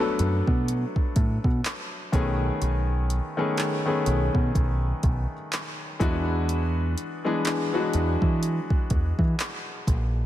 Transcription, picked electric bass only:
0, 0, Header, 1, 2, 480
1, 0, Start_track
1, 0, Tempo, 967742
1, 1297, Time_signature, 4, 2, 24, 8
1, 5088, End_track
2, 0, Start_track
2, 0, Title_t, "Picked electric bass"
2, 0, Program_c, 0, 34
2, 97, Note_on_c, 0, 42, 93
2, 202, Note_off_c, 0, 42, 0
2, 236, Note_on_c, 0, 47, 90
2, 416, Note_off_c, 0, 47, 0
2, 577, Note_on_c, 0, 45, 86
2, 682, Note_off_c, 0, 45, 0
2, 717, Note_on_c, 0, 47, 94
2, 792, Note_off_c, 0, 47, 0
2, 1057, Note_on_c, 0, 35, 97
2, 1237, Note_off_c, 0, 35, 0
2, 1298, Note_on_c, 0, 35, 94
2, 1582, Note_off_c, 0, 35, 0
2, 2018, Note_on_c, 0, 35, 88
2, 2122, Note_off_c, 0, 35, 0
2, 2157, Note_on_c, 0, 47, 90
2, 2232, Note_off_c, 0, 47, 0
2, 2258, Note_on_c, 0, 35, 97
2, 2438, Note_off_c, 0, 35, 0
2, 2498, Note_on_c, 0, 35, 93
2, 2602, Note_off_c, 0, 35, 0
2, 2979, Note_on_c, 0, 40, 99
2, 3442, Note_off_c, 0, 40, 0
2, 3941, Note_on_c, 0, 40, 81
2, 4044, Note_off_c, 0, 40, 0
2, 4077, Note_on_c, 0, 52, 91
2, 4257, Note_off_c, 0, 52, 0
2, 4418, Note_on_c, 0, 40, 82
2, 4522, Note_off_c, 0, 40, 0
2, 4558, Note_on_c, 0, 52, 94
2, 4633, Note_off_c, 0, 52, 0
2, 4898, Note_on_c, 0, 34, 91
2, 5078, Note_off_c, 0, 34, 0
2, 5088, End_track
0, 0, End_of_file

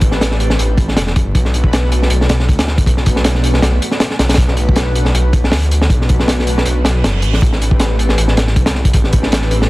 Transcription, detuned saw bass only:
0, 0, Header, 1, 2, 480
1, 0, Start_track
1, 0, Tempo, 379747
1, 1700, Time_signature, 4, 2, 24, 8
1, 12256, End_track
2, 0, Start_track
2, 0, Title_t, "Detuned saw bass"
2, 0, Program_c, 0, 39
2, 0, Note_on_c, 0, 33, 99
2, 719, Note_off_c, 0, 33, 0
2, 741, Note_on_c, 0, 33, 90
2, 1220, Note_on_c, 0, 28, 102
2, 1239, Note_off_c, 0, 33, 0
2, 1466, Note_on_c, 0, 31, 84
2, 1485, Note_off_c, 0, 28, 0
2, 1681, Note_off_c, 0, 31, 0
2, 1703, Note_on_c, 0, 35, 100
2, 2644, Note_off_c, 0, 35, 0
2, 2659, Note_on_c, 0, 35, 107
2, 3143, Note_on_c, 0, 38, 100
2, 3162, Note_off_c, 0, 35, 0
2, 3604, Note_off_c, 0, 38, 0
2, 3619, Note_on_c, 0, 35, 101
2, 4562, Note_off_c, 0, 35, 0
2, 4579, Note_on_c, 0, 35, 89
2, 4798, Note_off_c, 0, 35, 0
2, 5298, Note_on_c, 0, 35, 104
2, 5517, Note_off_c, 0, 35, 0
2, 5531, Note_on_c, 0, 35, 102
2, 6478, Note_off_c, 0, 35, 0
2, 6496, Note_on_c, 0, 35, 105
2, 6976, Note_on_c, 0, 38, 102
2, 6995, Note_off_c, 0, 35, 0
2, 7440, Note_off_c, 0, 38, 0
2, 7456, Note_on_c, 0, 35, 102
2, 8400, Note_off_c, 0, 35, 0
2, 8418, Note_on_c, 0, 35, 91
2, 8899, Note_on_c, 0, 30, 101
2, 8918, Note_off_c, 0, 35, 0
2, 9140, Note_on_c, 0, 33, 83
2, 9159, Note_off_c, 0, 30, 0
2, 9358, Note_off_c, 0, 33, 0
2, 9380, Note_on_c, 0, 33, 98
2, 10322, Note_off_c, 0, 33, 0
2, 10340, Note_on_c, 0, 33, 106
2, 10821, Note_on_c, 0, 36, 103
2, 10840, Note_off_c, 0, 33, 0
2, 11283, Note_off_c, 0, 36, 0
2, 11299, Note_on_c, 0, 33, 101
2, 12242, Note_off_c, 0, 33, 0
2, 12256, End_track
0, 0, End_of_file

